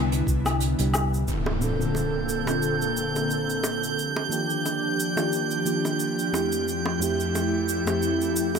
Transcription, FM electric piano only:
0.00 0.23 G3 medium
0.00 0.23 B3 medium
0.00 0.24 D4 medium
0.00 0.24 E4 loud
0.45 0.75 G3 medium
0.45 0.75 B3 medium
0.45 0.75 D4 medium
0.45 0.76 E4 medium
0.79 1.26 G3 medium
0.79 1.26 B3 medium
0.79 1.27 D4 medium
0.79 1.27 G4 medium
1.59 2.42 A#2 medium
1.59 2.43 C4 medium
1.59 2.43 D4 medium
1.59 2.44 F4 medium
1.59 2.44 A4 medium
2.46 3.95 A#2 medium
2.46 3.95 C4 medium
2.46 3.96 D4 medium
2.46 3.96 F4 medium
2.46 3.97 A4 medium
4.29 5.12 D#3 medium
4.29 5.13 A#3 medium
4.29 5.13 D4 medium
4.29 5.14 F4 medium
4.29 5.14 G4 medium
5.16 5.62 D#3 medium
5.16 5.62 A#3 medium
5.16 5.63 D4 medium
5.16 5.63 F4 medium
5.16 5.63 G4 medium
5.65 6.30 D#3 medium
5.65 6.30 A#3 medium
5.65 6.30 D4 medium
5.65 6.31 F4 medium
5.65 6.31 G4 medium
6.33 6.97 F2 medium
6.33 6.97 A3 medium
6.33 6.98 C4 medium
6.33 6.98 E4 medium
6.33 6.98 G4 medium
6.99 7.82 F2 medium
6.99 7.82 A3 medium
6.99 7.83 C4 medium
6.99 7.83 E4 medium
6.99 7.84 G4 medium
7.85 8.59 F2 medium
7.85 8.59 A3 medium
7.85 8.59 C4 medium
7.85 8.59 E4 medium
7.89 8.59 G4 medium

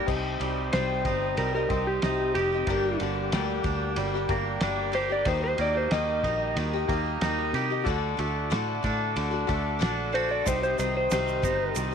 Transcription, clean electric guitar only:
0.09 1.71 C3 medium
0.42 0.73 G3 medium
0.74 1.38 G3 medium
1.06 2.02 D#4 medium
1.39 3.33 G3 medium
1.70 2.68 C4 medium
2.03 2.68 D#4 medium
2.35 4.95 G4 medium
2.68 4.30 G2 medium
3.01 4.63 D3 medium
3.33 3.97 G3 medium
3.66 4.62 D4 medium
3.98 5.26 G3 medium
4.30 5.28 A#3 medium
4.63 5.28 D4 medium
4.95 5.28 G4 medium
5.27 5.90 D#3 medium
5.59 6.87 A#3 medium
5.91 6.55 D#3 medium
6.24 7.21 D#4 medium
6.56 7.86 D#3 medium
6.89 7.86 A#3 medium
7.22 7.87 D#4 medium
7.55 7.87 G4 medium
7.87 8.50 D3 medium
8.20 9.47 A3 medium
8.51 9.15 D3 medium
8.84 9.81 D4 medium
9.17 10.46 D3 medium
9.49 10.46 A3 medium
9.82 10.46 D4 medium
10.15 10.47 F#4 medium
10.47 11.95 C3 medium
10.79 11.11 D#3 medium
11.13 11.76 D#3 medium
11.44 11.95 D#4 medium
11.77 11.95 D#3 medium

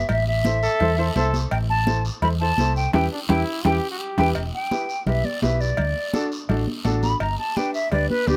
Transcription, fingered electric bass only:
0.09 0.66 A1 medium
0.81 1.09 E2 loud
1.16 1.44 C2 medium
1.52 2.09 A1 loud
2.22 2.51 E2 loud
2.58 2.86 C2 medium
2.94 3.07 E2 medium
3.29 3.42 E2 loud
3.65 3.78 E2 medium
4.19 4.32 E2 medium
4.36 4.50 E1 medium
5.07 5.21 B1 loud
5.43 5.71 B1 medium
5.79 5.93 D2 medium
6.49 6.64 A1 loud
6.85 7.14 A1 medium
7.21 7.35 G1 medium
7.92 8.06 D2 medium
8.27 8.37 D2 loud

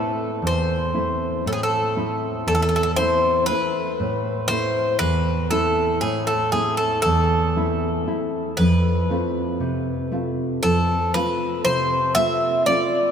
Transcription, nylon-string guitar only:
0.00 0.41 A2 medium
0.00 0.74 A3 medium
0.00 0.74 C4 soft
0.00 0.75 E4 medium
0.42 1.42 E2 medium
0.94 1.76 A3 medium
0.94 1.76 C4 soft
0.94 1.76 E4 medium
1.46 2.45 A2 medium
1.96 2.78 A3 soft
1.96 2.78 C4 soft
1.96 2.78 E4 medium
2.47 3.46 E2 medium
2.98 3.48 A3 medium
2.98 3.49 C4 soft
2.98 3.50 E4 medium
3.50 3.90 A3 soft
3.50 3.91 C4 soft
3.50 3.91 E4 medium
4.00 4.99 A2 medium
4.49 5.31 A3 medium
4.49 5.32 C4 soft
4.49 5.32 E4 medium
5.00 6.00 E2 medium
5.51 6.33 A3 medium
5.51 6.34 C4 soft
5.51 6.34 E4 medium
6.02 7.02 A2 medium
6.53 7.35 A3 soft
6.53 7.35 C4 soft
6.53 7.36 E4 medium
7.05 8.04 E2 medium
7.56 8.06 A3 soft
7.56 8.06 C4 soft
7.56 8.06 E4 medium
8.07 8.48 A3 soft
8.07 8.48 C4 soft
8.07 8.48 E4 medium
8.58 9.57 F2 medium
9.10 9.91 A3 soft
9.10 9.92 C4 soft
9.10 9.92 F4 medium
9.60 10.59 C3 medium
10.11 10.93 A3 medium
10.11 10.93 C4 medium
10.11 10.93 F4 medium
10.63 11.62 F2 medium
11.15 11.96 A3 medium
11.15 11.96 C4 soft
11.15 11.96 F4 medium
11.66 12.64 C3 medium
12.16 12.66 A3 medium
12.16 12.66 C4 soft
12.16 12.67 F4 medium
12.67 13.08 A3 soft
12.67 13.08 C4 soft
12.67 13.08 F4 medium

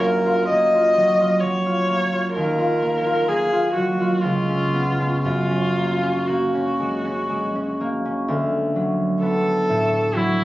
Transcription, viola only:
0.00 0.48 A#4 medium
0.49 1.42 D#5 medium
1.40 2.33 C#5 medium
2.34 3.30 A#4 medium
3.28 3.72 G#4 medium
3.73 4.22 F#4 soft
4.21 5.23 F4 medium
5.23 6.29 F4 medium
6.27 7.80 F#4 soft
9.22 10.18 A4 medium
10.17 10.44 E4 medium

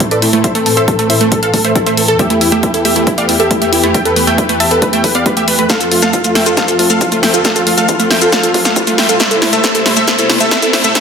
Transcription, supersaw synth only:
0.00 0.09 E4 medium
0.11 0.20 B4 medium
0.11 0.20 D5 medium
0.22 0.31 E4 medium
0.33 0.42 E4 medium
0.44 0.53 C5 medium
0.44 0.53 E5 loud
0.55 0.64 A4 medium
0.66 0.75 A4 medium
0.77 0.86 C5 medium
0.77 0.86 E5 medium
0.88 0.97 A4 medium
0.99 1.08 A4 medium
1.10 1.19 C5 medium
1.10 1.19 E5 medium
1.21 1.30 A4 medium
1.32 1.41 A4 medium
1.43 1.52 A4 medium
1.43 1.51 F5 medium
1.54 1.62 A4 medium
1.65 1.73 C5 medium
1.65 1.73 E5 medium
1.76 1.84 A4 medium
1.86 1.95 C5 medium
1.86 1.95 E5 medium
1.97 2.06 A4 medium
2.08 2.17 A4 medium
2.19 2.28 G4 medium
2.19 2.28 E5 loud
2.30 2.39 E4 medium
2.41 2.50 E4 medium
2.52 2.61 G4 medium
2.52 2.61 E5 medium
2.63 2.72 E4 medium
2.74 2.83 E4 medium
2.85 2.94 G4 medium
2.85 2.94 E5 medium
2.96 3.05 E4 medium
3.07 3.16 E4 medium
3.18 3.27 D5 medium
3.18 3.27 F5 medium
3.29 3.38 E4 medium
3.40 3.49 G4 medium
3.40 3.49 E5 medium
3.51 3.60 E4 medium
3.62 3.70 G4 medium
3.62 3.70 E5 medium
3.73 3.81 E4 medium
3.84 3.92 E4 medium
3.94 4.03 E5 medium
3.94 4.03 G5 medium
4.05 4.14 B4 medium
4.16 4.25 B4 medium
4.27 4.36 E5 medium
4.27 4.36 G5 medium
4.38 4.47 B4 medium
4.49 4.58 B4 medium
4.60 4.69 E5 medium
4.60 4.69 A5 medium
4.71 4.80 B4 medium
4.82 4.91 B4 medium
4.93 5.02 E5 medium
4.93 5.02 G5 medium
5.04 5.13 B4 medium
5.15 5.24 D5 medium
5.15 5.24 F5 medium
5.26 5.35 B4 medium
5.37 5.46 G4 medium
5.37 5.46 E5 medium
5.48 5.57 B4 medium
5.59 5.68 B4 medium
5.70 5.79 A4 medium
5.70 5.79 F5 medium
5.81 5.89 F4 medium
5.92 6.00 F4 medium
6.03 6.11 A4 medium
6.03 6.11 F5 medium
6.14 6.22 F4 medium
6.24 6.33 F4 medium
6.35 6.44 E5 medium
6.35 6.44 G5 medium
6.46 6.55 F4 medium
6.57 6.66 A4 medium
6.57 6.66 F5 medium
6.68 6.77 F4 medium
6.79 6.88 F4 medium
6.90 6.99 A4 medium
6.90 6.99 F5 medium
7.01 7.10 F4 medium
7.12 7.21 F4 medium
7.23 7.32 E5 medium
7.23 7.32 G5 medium
7.34 7.43 F4 medium
7.45 7.54 A4 medium
7.45 7.54 F5 medium
7.56 7.65 F4 medium
7.67 7.76 F4 medium
7.78 7.86 A4 medium
7.78 7.86 F5 medium
7.89 7.97 F4 medium
7.99 8.08 F4 medium
8.10 8.19 E5 medium
8.10 8.19 G5 medium
8.21 8.30 F4 medium
8.32 8.41 A4 medium
8.32 8.41 F5 medium
8.43 8.52 F4 medium
8.54 8.63 F4 medium
8.65 8.74 A4 medium
8.65 8.74 F5 medium
8.76 8.85 F4 medium
8.87 8.96 F4 medium
8.98 9.07 E5 medium
8.98 9.07 G5 medium
9.09 9.18 F4 medium
9.20 9.29 A4 medium
9.20 9.29 E5 loud
9.31 9.40 E4 medium
9.42 9.51 E4 medium
9.53 9.62 A4 medium
9.53 9.62 E5 medium
9.64 9.73 A4 medium
9.64 9.73 E5 loud
9.75 9.84 E4 medium
9.86 9.95 E4 medium
9.97 10.05 A4 medium
9.97 10.05 E5 loud
10.08 10.16 A4 medium
10.08 10.16 E5 loud
10.19 10.27 E4 medium
10.29 10.38 E4 medium
10.40 10.49 A4 medium
10.40 10.49 E5 loud
10.51 10.60 A4 medium
10.51 10.60 E5 medium
10.62 10.71 E4 medium
10.73 10.82 E4 medium
10.84 10.93 A4 medium
10.84 10.93 E5 medium
10.95 11.00 A4 medium
10.95 11.00 E5 loud

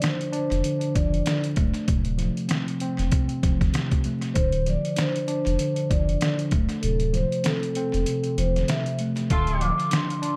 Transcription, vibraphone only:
0.04 0.31 C5 medium
0.34 0.92 C5 medium
0.95 1.41 D5 medium
4.34 4.63 C5 medium
4.69 4.96 D5 medium
5.01 5.26 C5 medium
5.27 5.86 C5 medium
5.90 6.36 D5 medium
6.82 7.10 A4 medium
7.14 7.42 C5 medium
7.44 7.72 A4 medium
7.74 8.33 A4 medium
8.38 8.66 C5 medium
8.69 8.96 E5 medium
9.32 9.59 C6 loud
9.61 9.89 D6 medium
9.95 10.22 C6 medium
10.24 10.36 C6 medium

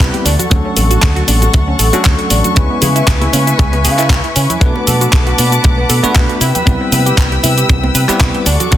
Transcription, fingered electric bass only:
0.25 0.35 D2 medium
0.51 0.61 D2 loud
0.77 0.95 A1 medium
1.03 1.22 D2 medium
1.28 1.47 A1 medium
1.54 1.73 D2 loud
1.79 1.89 A1 loud
2.06 2.15 D2 medium
2.30 2.40 A1 medium
2.57 2.66 C#2 loud
2.82 3.01 C#3 medium
3.07 3.26 C#2 medium
3.33 3.52 C#3 medium
3.59 3.86 C#2 loud
3.85 4.11 C#3 medium
4.09 4.20 C#2 loud
4.36 4.46 C#3 medium
4.61 4.71 B1 loud
4.87 5.06 B2 medium
5.13 5.32 B1 medium
5.38 5.57 B2 medium
5.64 5.83 B1 loud
5.89 5.99 B2 loud
6.03 muted fingered electric bass stroke soft
6.16 6.25 B1 medium
6.41 6.51 C3 medium
6.67 6.77 C2 loud
6.92 7.11 C3 medium
7.17 7.36 C2 medium
7.44 7.62 C3 medium
7.70 7.88 C2 loud
7.95 8.05 C3 loud
8.09 muted fingered electric bass stroke soft
8.20 8.30 C2 medium
8.46 8.56 D2 medium
8.72 8.77 D2 loud

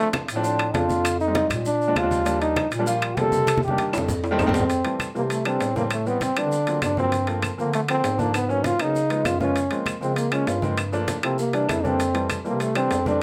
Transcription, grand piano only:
0.00 0.20 F3 medium
0.00 0.20 A3 medium
0.00 0.20 C4 medium
0.00 0.20 D4 medium
0.35 0.41 F3 medium
0.35 0.41 A3 medium
0.35 0.41 C4 medium
0.35 0.41 D4 loud
0.43 0.65 F3 medium
0.43 0.65 A3 medium
0.43 0.65 C4 medium
0.43 0.65 D4 medium
0.73 1.04 F3 medium
0.73 1.04 A3 medium
0.73 1.04 C4 medium
0.73 1.05 D4 medium
1.27 1.65 G3 medium
1.27 1.66 G#3 medium
1.27 1.66 C4 medium
1.27 1.66 D#4 medium
1.88 1.99 F3 medium
1.88 1.99 G#3 medium
1.88 1.99 C4 medium
1.88 1.99 D4 medium
2.02 2.19 F3 medium
2.02 2.19 G#3 medium
2.02 2.19 C4 medium
2.02 2.19 D4 loud
2.25 2.63 F3 medium
2.25 2.63 G3 medium
2.25 2.63 A#3 medium
2.25 2.63 D4 medium
2.79 2.84 F3 medium
2.79 2.85 G3 medium
2.79 2.85 A#3 medium
2.79 2.85 D4 medium
2.86 3.08 F3 medium
2.86 3.08 G3 medium
2.86 3.08 A#3 medium
2.86 3.08 F4 medium
3.17 3.47 F3 medium
3.17 3.48 G3 medium
3.17 3.48 A#3 medium
3.17 3.48 C4 medium
3.70 4.08 D#3 medium
3.70 4.08 G3 medium
3.70 4.08 A#3 medium
3.70 4.09 D4 medium
4.31 4.42 D#3 loud
4.31 4.42 G3 loud
4.31 4.42 A3 loud
4.31 4.42 C4 loud
4.46 4.62 D#3 loud
4.46 4.62 G3 medium
4.46 4.63 A3 loud
4.46 4.63 C4 loud
4.84 5.06 E3 medium
4.84 5.06 G3 medium
4.84 5.06 A3 medium
4.84 5.06 C4 medium
5.15 5.36 E3 medium
5.15 5.36 G3 medium
5.15 5.36 A3 medium
5.15 5.36 C4 medium
5.45 5.66 E3 medium
5.45 5.67 G3 medium
5.45 5.67 A3 medium
5.45 5.67 D4 medium
5.75 5.91 E3 medium
5.75 5.91 G3 medium
5.75 5.91 A3 medium
5.75 5.91 C4 medium
6.06 6.27 E3 medium
6.06 6.27 G3 medium
6.06 6.28 B3 medium
6.06 6.28 C4 medium
6.37 6.52 E3 medium
6.37 6.52 G3 medium
6.37 6.52 B3 medium
6.37 6.52 C4 medium
6.67 6.88 F3 medium
6.67 6.88 F#3 medium
6.67 6.89 A#3 medium
6.67 6.89 C4 medium
6.97 7.13 F3 medium
6.97 7.13 F#3 medium
6.97 7.13 A#3 medium
6.97 7.13 C4 medium
7.27 7.49 F3 medium
7.27 7.49 A3 medium
7.27 7.49 A#3 medium
7.27 7.49 C4 medium
7.58 7.79 F3 medium
7.58 7.79 A3 medium
7.58 7.79 A#3 medium
7.58 7.80 C4 medium
7.88 8.10 F3 medium
7.88 8.10 A3 medium
7.88 8.10 A#3 medium
7.88 8.10 C4 medium
8.18 8.34 F3 medium
8.18 8.34 A3 medium
8.18 8.34 A#3 medium
8.18 8.34 D4 medium
8.48 8.70 F#3 medium
8.48 8.70 A#3 medium
8.48 8.70 B3 medium
8.48 8.71 C#4 medium
8.79 8.94 F#3 medium
8.79 8.95 A#3 medium
8.79 8.95 B3 medium
8.79 8.95 C#4 medium
9.10 9.31 F3 medium
9.10 9.31 G#3 medium
9.10 9.32 B3 medium
9.10 9.32 D#4 medium
9.40 9.56 F3 medium
9.40 9.56 G#3 medium
9.40 9.56 B3 medium
9.40 9.56 F4 medium
9.71 9.92 F3 medium
9.71 9.92 G#3 medium
9.71 9.93 A#3 medium
9.71 9.93 C4 medium
10.01 10.22 F3 medium
10.01 10.23 G#3 medium
10.01 10.23 A#3 medium
10.01 10.23 C4 medium
10.31 10.53 F3 medium
10.31 10.53 G#3 medium
10.31 10.53 A#3 medium
10.31 10.53 C#4 medium
10.62 10.77 F3 medium
10.62 10.78 G#3 medium
10.62 10.78 A#3 medium
10.62 10.78 C4 medium
10.92 11.14 F3 medium
10.92 11.14 A3 medium
10.92 11.14 A#3 medium
10.92 11.14 D4 loud
11.22 11.38 F3 medium
11.22 11.38 A3 medium
11.22 11.38 A#3 medium
11.22 11.38 E4 medium
11.53 11.75 E3 medium
11.53 11.75 G3 medium
11.53 11.75 A#3 medium
11.53 11.75 D4 medium
11.83 11.99 E3 medium
11.83 11.99 G3 medium
11.83 11.99 A#3 medium
11.83 11.99 D4 medium
12.14 12.36 E3 medium
12.14 12.36 G3 medium
12.14 12.36 A3 medium
12.14 12.36 C4 medium
12.44 12.66 E3 medium
12.44 12.66 G3 medium
12.44 12.66 A3 medium
12.44 12.67 C4 medium
12.75 12.97 E3 medium
12.75 12.97 G3 medium
12.75 12.97 A3 medium
12.75 12.97 D4 medium
13.06 13.23 E3 medium
13.06 13.23 G3 medium
13.06 13.23 A3 medium
13.06 13.23 C4 medium

